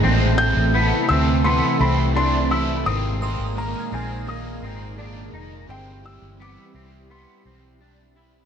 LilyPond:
<<
  \new Staff \with { instrumentName = "Synth bell" } { \time 4/4 \key a \minor \tempo 4 = 85 r1 | r8 ees'''8 f'''16 aes'''16 bes'''2 r8 | r1 | }
  \new Staff \with { instrumentName = "Felt piano" } { \time 4/4 \key a \minor r8 g'''4 e'''8 c'''8 b''8 c'''8 e'''8 | ees'''8 c'''8 bes''8 aes''8 ees'''4. r8 | g''8 e'''8 d'''4 c'''4. r8 | }
  \new Staff \with { instrumentName = "Clean electric guitar" } { \time 4/4 \key a \minor c'4 b8 c'8 b8 c'8 d'8 e'8 | c'4 bes8 c'8 bes8 c'8 d'8 ees'8 | c'4 b8 c'8 b8 c'8 d'8 e'8 | }
  \new Staff \with { instrumentName = "Overdriven electric guitar" } { \time 4/4 \key a \minor <a, e a c' e' a'>8 <a c' e' a'>8 <a c' e' a'>8 <a c' e' a'>8 <a, e a c' e' a'>8 <a c' e' a'>8 <a c' e' a'>8 <a c' e' a'>8 | <aes bes ees' bes'>8 <bes ees' bes'>8 <aes bes ees' bes'>8 <bes ees' bes'>8 <aes bes ees' bes'>8 <bes ees' bes'>8 <aes bes ees' bes'>8 <bes ees' bes'>8 | <g, e g c' e' g'>8 <g c' e' g'>8 <g c' e' g'>8 <g c' e' g'>8 <g, e g c' e' g'>8 <g c' e' g'>8 <g c' e' g'>8 <g c' e' g'>8 | }
  \new Staff \with { instrumentName = "Ambient pad" } { \clef bass \time 4/4 \key a \minor <c e a e' a'>1 | <bes, ees aes bes aes'>1 | <e g e' g'>1 | }
  \new Staff \with { instrumentName = "Fingered electric bass" } { \clef bass \time 4/4 \key a \minor a,,8. a,,8 r16 d,8. r16 c,4. | aes,,8. aes,,8 r16 bes,,4 aes,,4 f,,8 | g,,8. g,,8 r16 c,8. r16 b,,4. | }
>>